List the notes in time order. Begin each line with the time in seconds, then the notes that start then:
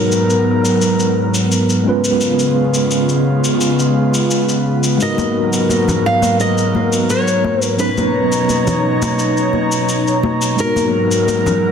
Already playing: G#2 F#3 G#3 B3 D#4 F#4 A#4
0.12 shaker
0.30 shaker
0.65 shaker
0.82 shaker
1.00 shaker
1.35 shaker
1.52 shaker
1.70 shaker
1.84 C#3 G#3 B3 C#4 F4
1.89 B4
2.05 shaker
2.21 shaker
2.39 shaker
2.74 shaker
2.91 shaker
3.09 shaker
3.45 shaker
3.61 shaker
3.79 shaker
4.14 shaker
4.31 shaker
4.49 shaker
4.84 shaker
4.98 G#2 F#3 G#3 B3 D#4 A#4, shaker
5.02 F#4 A#4 D#5
5.18 high conga, shaker
5.53 shaker
5.69 high conga, shaker
5.88 low conga, shaker
6.06 F5
6.22 high conga, shaker
6.40 D#5, shaker
6.58 shaker
6.75 high conga
6.93 shaker
7.10 C#5, shaker
7.28 shaker
7.44 high conga
7.62 B4, shaker
7.76 B2 F#3 B3 C#4 D#4 B4 C#5 A#5, shaker
7.81 B4
7.98 high conga, shaker
8.32 shaker
8.49 high conga, shaker
8.67 low conga, shaker
9.02 high conga, shaker
9.19 shaker
9.37 shaker
9.53 high conga
9.72 shaker
9.89 shaker
10.07 shaker
10.23 high conga
10.42 shaker
10.56 G#2 F#3 G#3 B3 D#4 A#4, shaker
10.60 F#4 A#4
10.76 high conga, shaker
11.12 shaker
11.28 high conga, shaker
11.46 low conga, shaker